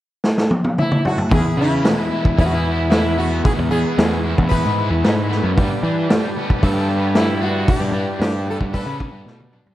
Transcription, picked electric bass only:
1.32 E2
1.57 C#3
2.38 E2
3.59 E2
3.71 E2
3.98 E2
4.38 E2
4.65 G#2
4.90 E2
5.04 G#2
5.44 F#2
5.58 G2
5.83 E3
6.63 G2
7.80 G2
7.92 G2
8.20 G2
8.61 G2
8.86 C#3
9.12 G2
9.25 B2
9.66 G3

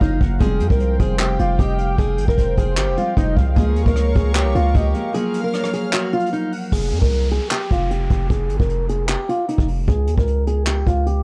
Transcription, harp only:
Already playing: F3 F#3 A#3 C#4 F4
0.39 F3 G3 G#3 C4 F4
2.96 F3 G3 G#3 C4 F4
3.55 F3 G#3 A#3 C#4 F4
4.94 F3 G#3 A#3 C#4 F4
5.12 F3 F#3 A#3 C#4 F4

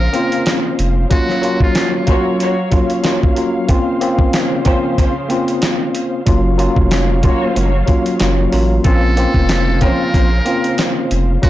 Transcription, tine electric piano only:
0.13 A#3 C4 C#4 F4
1.10 F#3 A#3 C#4 F4
1.42 F#3 A#3 C#4 F4
2.06 F#3 A#3 C#4 F4
2.70 F#3 A#3 C#4 F4
3.03 F#3 A#3 C#4 F4
3.35 F#3 A#3 C#4 F4
3.68 A#3 C4 C#4 F4
4.00 A#3 C4 C#4 F4
4.65 A#3 C4 C#4 F4
5.29 A#3 C4 C#4 F4
6.26 F#3 A#3 C#4 F4
6.57 F#3 A#3 C#4 F4
7.22 F#3 A#3 C#4 F4
7.86 F#3 A#3 C#4 F4
8.19 F#3 A#3 C#4 F4
8.51 F#3 A#3 C#4 F4
8.84 A#3 C4 C#4 F4
9.17 A#3 C4 C#4 F4
9.81 A#3 C4 C#4 F4
10.45 A#3 C4 C#4 F4
11.42 F#3 A#3 C#4 F4

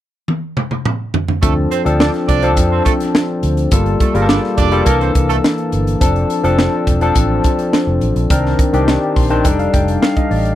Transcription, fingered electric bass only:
1.43 D2
1.86 D2
2.29 C2
2.57 F2
3.43 D2
3.72 G1
4.15 G1
4.58 F1
4.86 C2
5.15 C2
5.73 G1
6.01 F1
6.44 F1
6.87 E1
7.16 A1
7.87 F1
8.02 A1
8.16 A#1
8.30 C2
8.73 C2
9.16 A#1
9.45 F1
9.74 F1
10.31 A1

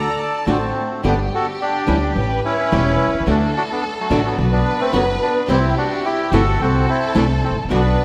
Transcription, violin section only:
Already playing: A#5
0.19 A5
1.03 G4
2.15 B4
3.28 A4
4.38 B4
5.49 G4
6.59 A4
7.71 B4

